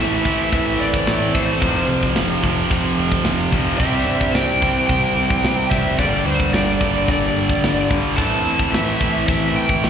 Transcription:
Already playing: A2 E3 A3 C4 A4 C5
0.00 A1 E5
0.25 A1 A2 E3 A3, kick
0.52 A1 E5, kick, china
0.80 A1 D5
0.94 kick
1.07 A1, snare, china
1.34 A1 E3 A3 C5, kick
1.38 A2
1.60 F1 F2 C3 F3, kick, china
1.88 C2
2.03 kick
2.16 F1, snare, china
2.42 F1 F2 C3 F3, kick
2.70 F1, kick, china
2.98 F1
3.12 kick
3.25 F1, snare, china
3.52 F1 F2 C3 F3, kick
3.78 C2 C3 E3 G3 C4 G4 C5 E5, kick, china
4.06 G2
4.21 kick
4.34 C2 G5, snare, china
4.62 C2 C3 G3 C4, kick
4.87 C2 G5, kick, china
5.16 C2
5.30 kick
5.43 C2, snare, china
5.70 F1 G3 C4 E5, kick
5.74 C3
5.98 G1 G2 D3 G3 A#3 G4 D5, kick, china
6.25 D2 C5
6.40 kick
6.52 G1 D5, snare, china
6.80 G1 G2 D3 G3, kick
7.08 G1 D5, kick, china
7.36 G1
7.50 kick
7.63 G1, snare, china
7.90 G1 G2 D3 G3, kick
8.17 A1 A2 E3 A3 C4 A4 C5 A5, kick, china, crash
8.44 E2
8.59 kick
8.72 A1 E5, snare, china
8.98 A1 A2 E3 A3, kick
9.27 A1 E5, kick, china
9.53 A1 G5
9.69 kick
9.81 A1, snare, china

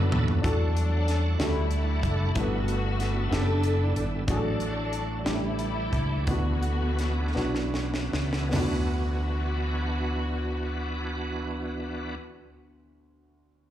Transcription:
Already playing: D3 F#3 B3 D4 E4 F#4 A4
0.12 D#2, mid tom
0.28 floor tom
0.42 E2 E3 F#3 G3 A3 D4 E4 F#4 A4 F#5, kick, closed hi-hat
0.77 closed hi-hat
1.08 snare, closed hi-hat
1.39 D2 G3 A3 D4 E4 F#4 G4 A4, snare, closed hi-hat
1.71 closed hi-hat
2.03 F#1, kick, closed hi-hat
2.34 G1 G2 G3 A3 B3 E4 A4, kick, closed hi-hat
2.38 B3 F#4
2.68 closed hi-hat
3.00 snare, closed hi-hat
3.30 F#1 B3 D4 E4 G4 A4, snare, closed hi-hat
3.63 closed hi-hat
3.96 G#1, closed hi-hat
4.27 A1 A2 F#3 A3 D4 F#4 G#4, kick, closed hi-hat
4.35 A4
4.60 closed hi-hat
4.93 closed hi-hat
5.25 A1 A2 E3 G3 A3 D4 E4 G4, snare, closed hi-hat
5.59 closed hi-hat
5.93 C#2, kick, closed hi-hat
6.26 D2 D3 E3 A3 B3 D4 E4 F#4, kick, closed hi-hat
6.63 closed hi-hat
6.99 snare, closed hi-hat
7.35 B1 B3 D4 E4 F#4, snare
7.55 snare
7.74 snare
7.94 snare
8.13 C#2, snare
8.33 snare
8.49 E3 B3 D4 F#4, floor tom, open hi-hat
8.53 D2 B3 E4 F#4, snare
8.58 F#4

